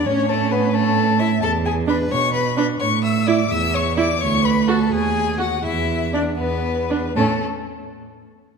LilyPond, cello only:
\new Staff \with { instrumentName = "Cello" } { \clef bass \time 6/8 \key a \major \tempo 4. = 85 a,2. | e,4. b,4. | a,4. e,4. | d,4. dis,4. |
e,4. e,4. | a,8 r2 r8 | }